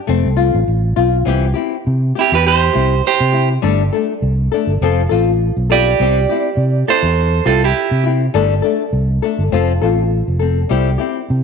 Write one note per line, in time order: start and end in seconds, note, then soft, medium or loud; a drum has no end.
0.07 0.23 F1 medium
0.07 0.27 A3 medium
0.07 0.28 C4 medium
0.07 muted nylon-string guitar stroke medium
0.25 0.50 C2 medium
0.37 0.59 C4 soft
0.37 0.57 F4 medium
0.54 0.66 A1 medium
0.68 0.95 A1 medium
0.96 1.24 B1 medium
0.96 1.17 C4 soft
0.96 1.16 F4 medium
1.25 1.52 C2 medium
1.25 1.45 E3 medium
1.25 1.46 C4 medium
1.25 1.46 E4 medium
1.25 1.47 G4 medium
1.54 1.76 C4 soft
1.54 1.75 E4 soft
1.54 1.74 G4 medium
1.87 2.12 C3 medium
2.15 2.36 C4 soft
2.15 2.33 E4 medium
2.15 2.34 G4 medium
2.21 2.32 G4 medium
2.32 2.68 E2 medium
2.32 2.45 G4 medium
2.32 2.47 B4 medium
2.46 3.01 G4 medium
2.46 3.06 C5 medium
2.73 3.00 C2 medium
2.73 2.94 C4 soft
2.73 2.94 E4 soft
2.73 2.93 G4 soft
3.07 3.48 G4 medium
3.07 3.48 C5 medium
3.20 3.57 C3 medium
3.32 3.53 E4 soft
3.32 3.52 G4 soft
3.62 3.89 G1 medium
3.62 3.82 G3 medium
3.62 3.82 A3 medium
3.62 3.82 D4 medium
3.62 3.82 A4 medium
3.92 4.13 A3 soft
3.92 4.12 D4 soft
3.92 4.11 A4 soft
4.22 4.47 C2 medium
4.52 4.72 A3 soft
4.52 4.72 D4 soft
4.52 4.71 A4 medium
4.67 4.79 G1 medium
4.81 5.06 F1 medium
4.81 5.01 F3 medium
4.81 5.01 C4 medium
4.81 5.01 F4 medium
4.81 5.01 A4 medium
5.09 5.50 A1 medium
5.09 5.30 C4 soft
5.09 5.30 F4 soft
5.09 5.29 A4 medium
5.57 5.93 B1 medium
5.70 5.89 C4 soft
5.70 5.89 F4 soft
5.70 6.85 G4 medium
5.70 5.89 A4 soft
5.70 6.85 D5 loud
6.00 6.25 C2 medium
6.00 6.18 G3 medium
6.00 6.19 C4 medium
6.00 6.19 E4 medium
6.00 6.20 G4 medium
6.29 6.49 C4 soft
6.29 6.49 E4 soft
6.29 6.48 G4 soft
6.57 6.82 C3 medium
6.88 7.08 C4 soft
6.88 7.07 E4 soft
6.88 7.07 G4 soft
6.88 7.43 A4 medium
6.88 7.50 C5 medium
7.03 7.39 E2 medium
7.45 7.71 C2 medium
7.45 7.66 C4 soft
7.45 7.66 E4 soft
7.45 7.61 F4 medium
7.45 7.65 G4 soft
7.45 7.63 A4 medium
7.64 8.04 E4 soft
7.64 8.04 G4 medium
7.91 8.28 C3 medium
8.04 8.25 C4 soft
8.04 8.24 E4 soft
8.04 8.23 G4 soft
8.34 8.60 G1 medium
8.34 8.53 G3 medium
8.34 8.53 A3 medium
8.34 8.54 D4 medium
8.34 8.54 A4 medium
8.62 8.84 A3 soft
8.62 8.83 D4 soft
8.62 8.82 A4 medium
8.93 9.18 C2 medium
9.22 9.43 A3 soft
9.22 9.42 D4 soft
9.22 9.42 A4 medium
9.39 9.51 G1 medium
9.52 9.78 F1 medium
9.52 9.71 F3 medium
9.52 9.71 C4 medium
9.52 9.72 F4 medium
9.52 9.72 A4 medium
9.81 10.21 A1 medium
9.81 10.02 C4 soft
9.81 10.01 F4 soft
9.81 10.01 A4 medium
10.28 10.64 F1 medium
10.39 10.60 C4 soft
10.39 10.59 A4 medium
10.69 10.96 C2 medium
10.69 10.89 G3 medium
10.69 10.89 C4 medium
10.69 10.90 E4 medium
10.69 10.90 G4 medium
10.98 11.19 C4 soft
10.98 11.19 E4 soft
10.98 11.18 G4 medium
11.30 11.44 C3 medium